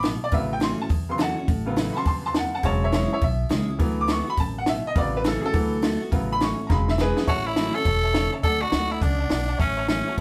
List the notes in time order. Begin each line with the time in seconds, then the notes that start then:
Already playing: A1
0.03 B2, snare, open hi-hat
0.24 D5
0.31 A1 A2 C#3 F#3 B3 E5, kick, open hi-hat
0.53 G5
0.60 E3 A3 C#4 F#4 C6, snare, open hi-hat
0.78 C#4 F#4 A5
0.89 E2, kick, open hi-hat
1.09 C#3 F#3 B3 C6
1.18 E3 A3 C#4 F#4 F#5 A5, snare, open hi-hat
1.37 C#4 F#4
1.48 A1 A2, kick, open hi-hat
1.66 C#3 F#3 B3
1.76 E3 A3 C#4 F#4, snare, open hi-hat
1.93 F#4 A5 B5
1.97 C#4 C6
2.05 E2 G2 A5 C6, kick, open hi-hat
2.26 A5 C6
2.34 F#2 F#5 A5, snare, open hi-hat
2.55 F#5 A5
2.63 E1 E2 C#3 F#3 G#3 C#5 A5, kick, open hi-hat
2.84 C#5 E5
2.92 E3 G#3 C#4 E4 C#5 E5, snare, open hi-hat
3.11 C#4 E4 C#5 E5
3.21 B1 B2 E5, kick, open hi-hat
3.49 C#2 E3 G#3 C#4 E4, snare, open hi-hat
3.68 C#4 E4
3.79 D2 D3 E3 F#3 B3, kick, open hi-hat
4.01 D6
4.08 D3 A3 B3 F#4 C#6, snare, open hi-hat
4.27 B3 F#4 B5
4.37 A1 F#2 A5, kick, open hi-hat
4.58 F#5
4.66 B2 E5, snare, open hi-hat
4.87 D#5
4.95 A1 A2 C#3 F#3 B3 D5, kick, open hi-hat
5.17 B4
5.24 E3 A3 C#4 F#4 A4, snare, open hi-hat
5.43 C#4 F#4 A4
5.53 D2 D3 E3 F#3 B3, kick, open hi-hat
5.82 D3 A3 B3 F#4, snare, open hi-hat
6.00 B3 F#4
6.11 A1 A2 C#3 F#3 B3, kick, open hi-hat
6.32 B5
6.40 E3 A3 C#4 F#4 C#6, snare, open hi-hat
6.59 C#4 F#4
6.67 E1 E2 C#3 F#3 G#3 A#5, kick, snare
6.72 B5
6.88 E5, snare
6.98 E3 G#3 C#4 E4 G#4 B4, snare
7.17 C#4 E4, snare
7.27 A1 A2 F#4 C#5 E5 A5, kick, open hi-hat
7.46 E4 C#5 E5 B5
7.56 E3 A3 C#4 F#4 C#5 E5 A5, snare, open hi-hat
7.75 C#4 F#4 A4 C#5 E5 A5
7.85 E1 B2 C#5 E5 A5, kick, open hi-hat
8.04 C#5 E5 A5
8.14 C#3 C#5 E5 A5, snare, open hi-hat
8.32 C#5 E5 A5
8.43 D2 D3 A4 D5 F#5 A5, kick, open hi-hat
8.61 F#4 D5 F#5 A5
8.72 D2 D3 A3 B3 F#4 D5 F#5 A5, snare, open hi-hat
8.90 E4 D5 F#5 A5
9.01 C#2 C#3 D4 D5 F#5 A5, kick, open hi-hat
9.19 D5 F#5 A5
9.30 B1 G2 D5 F#5 A5, snare, open hi-hat
9.48 D5 F#5 A5
9.58 A1 A2 C#4 C#5 E5 A5, kick, open hi-hat
9.77 C#5 E5 A5
9.88 E3 A3 C#4 F#4 C#5 E5 A5, snare, open hi-hat
10.07 C#4 F#4 C#5 E5 A5
10.17 C#5